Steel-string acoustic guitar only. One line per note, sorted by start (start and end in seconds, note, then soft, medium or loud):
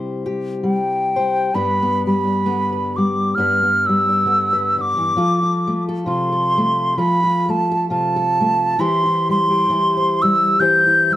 0.00 1.49 C3 medium
0.00 0.62 G3 medium
0.00 1.50 E4 medium
0.00 0.24 G4 medium
0.00 1.15 C5 medium
0.26 1.50 G4 medium
0.63 2.06 G3 medium
1.16 1.50 C5 medium
1.54 3.35 G2 medium
1.54 1.80 B3 medium
1.54 2.25 D4 medium
1.54 2.71 B4 medium
1.82 2.45 B3 medium
2.07 2.97 G3 medium
2.27 3.36 D4 medium
2.46 4.24 D3 medium
2.46 3.36 B3 medium
2.72 3.36 B4 medium
2.98 3.88 G3 medium
3.37 5.18 G2 medium
3.37 3.62 B3 medium
3.37 4.07 D4 medium
3.37 4.52 B4 medium
3.63 4.26 B3 medium
3.89 5.18 G3 medium
4.09 5.17 D4 medium
4.25 4.77 D3 medium
4.25 5.17 B3 medium
4.53 5.12 B4 medium
4.78 4.96 D3 medium
4.97 5.16 E3 medium
5.16 6.96 F3 medium
5.16 5.42 F4 medium
5.16 5.87 A4 medium
5.43 6.06 F4 medium
5.67 6.56 A3 medium
5.89 6.31 A4 medium
6.06 6.97 C3 medium
6.06 6.97 F4 medium
6.32 6.97 A4 medium
6.58 7.47 A3 medium
6.97 8.74 F3 medium
6.97 7.22 F4 medium
6.97 7.69 A4 medium
7.23 7.88 F4 medium
7.49 8.40 A3 medium
7.71 8.15 A4 medium
7.90 8.75 C3 medium
7.90 8.76 F4 medium
8.16 8.75 A4 medium
8.41 8.75 A3 medium
8.79 9.68 E3 medium
8.79 9.05 E4 medium
8.79 9.49 G4 medium
8.79 9.97 C5 medium
9.06 9.70 E4 medium
9.29 10.21 G3 medium
9.50 10.60 G4 medium
9.70 10.59 E3 medium
9.70 10.59 E4 medium
9.97 10.62 C5 medium
10.23 11.09 G3 medium
10.60 11.16 E3 medium
10.60 10.86 E4 medium
10.60 11.16 G4 medium
10.60 11.16 C5 medium
10.87 11.16 E4 medium
11.11 11.16 G3 medium